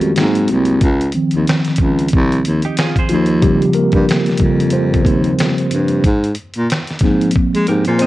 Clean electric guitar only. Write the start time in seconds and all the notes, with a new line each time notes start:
2.65 D#4 G4
2.79 F4 G#4
2.99 G#4 C5
7.68 G4 A#4
7.88 G#4 C5
8.02 C5 D#5